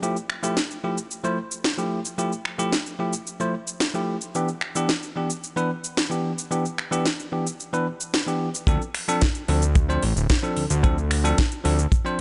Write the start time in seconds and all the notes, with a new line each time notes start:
0.02 F3 A3 E4 G4, shaker
0.17 shaker
0.30 finger snap
0.43 F3 A3 E4 G4, shaker
0.57 snare, shaker
0.71 shaker
0.84 F3 A3 E4 G4
0.98 shaker
1.11 shaker
1.24 F3 A3 E4 C5, shaker
1.51 shaker
1.64 snare, shaker
1.77 F3 A3 E4 G4, shaker
2.05 shaker
2.18 F3 A3 E4 G4, shaker
2.32 shaker
2.45 finger snap
2.58 F3 A3 E4 G4, shaker
2.72 snare, shaker
2.86 shaker
2.99 F3 A3 E4 G4
3.13 shaker
3.27 shaker
3.40 F3 A3 E4 C5, shaker
3.67 shaker
3.80 snare, shaker
3.94 F3 A3 E4 G4, shaker
4.21 shaker
4.35 E3 B3 D4 G4, shaker
4.48 shaker
4.61 finger snap
4.75 E3 B3 D4 G4, shaker
4.89 snare, shaker
5.03 shaker
5.16 E3 B3 D4 G4
5.30 shaker
5.44 shaker
5.56 E3 B3 D4 B4, shaker
5.84 shaker
5.97 snare, shaker
6.10 E3 B3 D4 G4, shaker
6.38 shaker
6.51 E3 B3 D4 G4, shaker
6.65 shaker
6.78 finger snap
6.91 E3 B3 D4 G4, shaker
7.06 snare, shaker
7.20 shaker
7.32 E3 B3 D4 G4
7.47 shaker
7.60 shaker
7.73 E3 B3 D4 B4, shaker
8.00 shaker
8.14 snare, shaker
8.27 E3 B3 D4 G4, shaker
8.55 shaker
8.67 D2 F3 C4 D4 A4, kick, closed hi-hat, shaker
8.82 shaker
8.95 finger snap, open hi-hat
9.08 F3 C4 D4 A4, shaker
9.21 kick, snare, closed hi-hat, shaker
9.35 closed hi-hat, shaker
9.48 D2 F3 C4 D4 A4, open hi-hat
9.62 closed hi-hat, shaker
9.75 kick, closed hi-hat, shaker
9.89 F3 C4 D4 C5, shaker
10.02 A1, open hi-hat
10.16 D1, shaker
10.30 kick, snare, closed hi-hat, shaker
10.43 F3 C4 D4 A4, shaker
10.57 D2, open hi-hat
10.70 D2, closed hi-hat, shaker
10.83 F3 C4 D4 A4, kick, closed hi-hat, shaker
10.98 shaker
11.11 finger snap, open hi-hat
11.24 F3 C4 D4 A4, shaker
11.38 kick, snare, closed hi-hat, shaker
11.52 closed hi-hat, shaker
11.64 D2 F3 C4 D4 A4, open hi-hat
11.79 closed hi-hat, shaker
11.92 kick, closed hi-hat, shaker
12.05 F3 C4 D4 C5, shaker